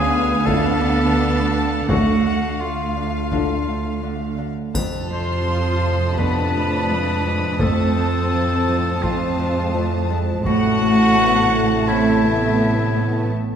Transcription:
0.00 1.85 D2 medium
0.00 0.44 D3 medium
0.00 0.46 B3 medium
0.00 0.10 C#4 medium
0.00 0.47 G#4 medium
0.00 1.85 F5 medium
0.00 0.46 G#5 medium
0.09 1.89 B3 medium
0.09 2.59 D4 medium
0.45 0.71 A2 medium
0.45 0.80 D3 medium
0.45 0.71 A3 medium
0.45 1.89 D4 medium
0.45 0.72 D4 medium
0.45 0.72 F4 medium
0.45 1.88 A4 medium
0.45 1.89 A5 medium
0.45 taiko medium
0.81 1.16 D3 soft
1.17 1.52 D3 soft
1.53 1.88 D3 soft
1.89 4.51 D2 soft
1.89 2.14 A2 soft
1.89 2.23 D3 medium
1.89 2.59 A3 medium
1.89 2.14 A3 soft
1.89 4.35 A3 soft
1.89 2.14 D4 soft
1.89 2.62 F#4 medium
1.89 2.15 A4 soft
1.89 4.51 F5 soft
1.89 2.59 F#5 medium
1.89 taiko medium
2.24 3.31 D3 soft
2.60 4.35 A3 soft
2.60 2.96 D4 soft
2.60 4.39 F4 soft
2.60 4.39 F5 soft
2.97 4.78 D4 soft
3.32 3.57 A2 soft
3.32 3.67 D3 soft
3.32 3.57 A3 soft
3.32 3.57 D4 soft
3.32 3.57 F4 soft
3.32 taiko medium
3.68 4.02 D3 soft
4.03 4.37 D3 soft
4.38 4.77 D3 soft
4.74 5.09 F2 soft
4.74 7.56 F2 soft
4.74 7.56 A2 medium
4.74 7.56 C3 medium
4.74 7.57 F3 soft
4.74 7.56 F4 soft
4.74 7.56 A5 soft
4.74 10.07 A5 soft
4.74 taiko medium
4.74 triangle soft
5.10 6.16 F2 soft
5.10 6.13 F4 medium
5.10 6.13 C5 medium
5.10 6.13 C6 medium
5.46 5.81 F3 soft
5.46 10.07 D#6 soft
5.82 8.32 F3 soft
6.17 6.53 F2 soft
6.17 6.51 B3 soft
6.17 7.60 D4 medium
6.17 7.58 B4 medium
6.17 7.60 B5 medium
6.17 taiko medium
6.53 6.89 F2 soft
6.53 6.89 A3 soft
6.88 7.23 F2 soft
6.88 7.60 G#3 soft
7.25 7.59 F2 soft
7.59 10.42 F2 medium
7.59 7.96 F2 medium
7.59 10.42 A2 soft
7.59 7.96 A3 soft
7.59 10.42 C4 soft
7.59 9.00 C4 medium
7.59 10.42 C4 medium
7.59 10.42 F4 soft
7.59 9.04 A4 medium
7.59 10.42 A5 medium
7.59 9.00 A5 medium
7.59 taiko medium
7.96 9.02 F2 soft
7.96 9.03 C4 soft
8.33 8.67 F3 soft
8.68 10.49 F3 soft
9.03 9.38 F2 medium
9.03 9.39 A3 soft
9.03 10.10 C4 medium
9.03 10.10 F4 medium
9.03 10.10 F5 soft
9.03 taiko medium
9.39 9.73 F2 soft
9.39 9.75 G#3 soft
9.74 10.09 F2 medium
9.74 10.09 A3 medium
10.10 10.49 F2 soft
10.10 10.46 G#3 medium
10.45 13.28 A1 medium
10.45 13.27 A2 medium
10.45 10.81 A2 medium
10.45 13.27 C3 medium
10.45 11.85 A3 medium
10.45 11.17 A3 medium
10.45 13.28 A3 medium
10.45 13.28 E4 medium
10.45 11.89 F#4 loud
10.45 11.85 F#5 medium
10.45 13.28 A5 medium
10.45 taiko medium
10.82 11.88 A2 soft
11.18 11.52 A3 soft
11.18 11.52 B3 medium
11.53 13.56 A3 soft
11.53 11.89 A3 medium
11.88 12.24 A2 medium
11.88 13.28 A3 medium
11.88 12.25 C4 medium
11.88 13.31 E4 medium
11.88 13.31 E5 medium
12.25 12.59 A2 soft
12.25 13.30 B3 medium
12.60 12.96 A2 soft
12.97 13.56 A2 soft

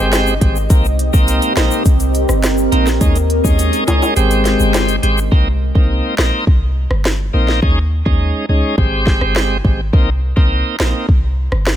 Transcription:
0.00 0.37 G1 medium
0.00 0.34 G#3 loud
0.00 0.68 G#3 medium
0.00 0.34 C4 medium
0.00 2.98 C4 medium
0.00 0.35 G4 loud
0.00 2.97 G4 medium
0.00 5.28 D#5 medium
0.13 cross-stick medium
0.13 snare loud
0.13 closed hi-hat medium
0.13 shaker medium
0.27 shaker medium
0.41 0.68 G#1 medium
0.41 0.58 G#3 medium
0.41 0.58 C4 medium
0.41 0.58 G4 medium
0.41 kick medium
0.41 closed hi-hat medium
0.56 shaker medium
0.70 1.10 C2 loud
0.70 0.86 A#3 medium
0.70 0.87 C4 medium
0.70 0.87 D#4 loud
0.70 4.13 A#4 medium
0.70 kick loud
0.70 closed hi-hat medium
0.70 shaker medium
0.85 shaker soft
0.99 closed hi-hat medium
1.13 1.40 C2 loud
1.13 1.53 A#3 medium
1.13 1.53 C4 medium
1.13 1.53 D#4 medium
1.13 kick medium
1.13 shaker medium
1.28 closed hi-hat medium
1.28 shaker medium
1.42 closed hi-hat medium
1.42 shaker soft
1.57 1.70 A#1 medium
1.57 1.83 A#3 medium
1.57 1.83 C4 medium
1.57 1.83 D#4 medium
1.57 cross-stick loud
1.57 snare loud
1.57 closed hi-hat medium
1.57 shaker medium
1.71 shaker medium
1.85 2.25 C2 loud
1.85 kick medium
1.85 closed hi-hat medium
1.85 shaker medium
2.00 closed hi-hat medium
2.00 shaker medium
2.14 closed hi-hat medium
2.14 shaker soft
2.29 2.68 G1 medium
2.29 cross-stick medium
2.29 shaker medium
2.43 cross-stick medium
2.43 snare loud
2.43 closed hi-hat medium
2.43 shaker medium
2.58 shaker medium
2.72 2.98 A#1 loud
2.72 2.88 A#3 medium
2.72 2.89 C4 medium
2.72 2.89 D#4 medium
2.72 closed hi-hat medium
2.87 snare medium
2.87 shaker medium
3.01 3.40 D#2 loud
3.01 3.17 G#3 medium
3.01 5.30 G#3 medium
3.01 3.17 C#4 medium
3.01 4.15 C#4 medium
3.01 3.18 D#4 loud
3.01 kick loud
3.01 closed hi-hat medium
3.01 shaker medium
3.16 closed hi-hat medium
3.16 shaker soft
3.30 closed hi-hat medium
3.44 3.71 D#2 medium
3.44 3.84 G#3 medium
3.44 3.84 C#4 medium
3.44 3.84 D#4 medium
3.44 kick medium
3.44 shaker medium
3.59 closed hi-hat medium
3.59 shaker medium
3.73 closed hi-hat medium
3.73 shaker soft
3.87 4.01 C#2 medium
3.87 4.14 G#3 medium
3.87 4.14 C#4 medium
3.87 4.14 D#4 medium
3.87 closed hi-hat medium
3.87 high timbale medium
3.87 shaker medium
4.02 high timbale medium
4.02 shaker medium
4.16 4.56 G#1 loud
4.16 4.96 G#3 loud
4.16 4.96 C4 medium
4.16 5.31 C4 medium
4.16 4.96 G4 loud
4.16 5.31 G4 medium
4.16 closed hi-hat medium
4.16 shaker medium
4.31 closed hi-hat medium
4.31 shaker medium
4.45 snare medium
4.45 closed hi-hat medium
4.45 shaker soft
4.60 4.99 G1 loud
4.60 shaker medium
4.74 cross-stick medium
4.74 snare loud
4.74 closed hi-hat medium
4.74 high timbale medium
4.74 shaker medium
4.89 closed hi-hat medium
4.89 shaker medium
5.03 5.29 G#1 medium
5.03 5.19 G#3 medium
5.03 5.19 C4 medium
5.03 5.20 G4 medium
5.03 closed hi-hat medium
5.18 shaker medium
5.32 5.71 C2 loud
5.32 5.48 A#3 loud
5.32 5.48 C4 medium
5.32 5.48 D#4 loud
5.32 kick loud
5.75 6.01 C2 loud
5.75 6.15 A#3 medium
5.75 6.15 C4 medium
5.75 6.15 D#4 medium
5.75 kick medium
6.18 6.31 A#1 medium
6.18 6.45 A#3 medium
6.18 6.45 C4 medium
6.18 6.45 D#4 medium
6.18 cross-stick medium
6.18 snare loud
6.47 6.87 C2 loud
6.47 kick medium
6.91 7.30 G1 medium
6.91 cross-stick medium
7.05 cross-stick medium
7.05 snare loud
7.33 7.60 A#1 medium
7.33 7.60 A#3 medium
7.33 7.60 C4 medium
7.33 7.60 D#4 medium
7.48 snare medium
7.62 8.02 D#2 loud
7.62 7.79 G#3 medium
7.62 7.79 C#4 medium
7.62 7.79 D#4 loud
7.62 kick loud
8.05 8.32 D#2 medium
8.05 8.45 G#3 medium
8.05 8.46 C#4 medium
8.05 8.46 D#4 medium
8.05 kick medium
8.49 8.62 C#2 medium
8.49 8.76 G#3 medium
8.49 8.76 C#4 medium
8.49 8.76 D#4 medium
8.78 9.17 G#1 loud
8.78 9.57 G#3 medium
8.78 9.58 C4 medium
8.78 9.58 G4 loud
8.78 kick medium
9.07 kick medium
9.07 snare medium
9.21 9.61 G1 medium
9.21 cross-stick medium
9.36 cross-stick medium
9.36 snare loud
9.64 9.91 G#1 medium
9.64 9.81 G#3 medium
9.64 9.81 C4 medium
9.64 9.81 G4 medium
9.64 kick medium
9.93 10.33 C2 loud
9.93 10.10 A#3 loud
9.93 10.10 C4 medium
9.93 10.10 D#4 loud
9.93 kick loud
10.36 10.63 C2 loud
10.36 10.76 A#3 medium
10.36 10.76 C4 medium
10.36 10.77 D#4 medium
10.36 kick medium
10.80 10.93 A#1 medium
10.80 11.06 A#3 medium
10.80 11.06 C4 medium
10.80 11.07 D#4 medium
10.80 cross-stick medium
10.80 snare loud
11.09 11.48 C2 medium
11.09 kick medium
11.52 11.77 G1 medium
11.52 cross-stick medium
11.67 cross-stick medium
11.67 snare loud

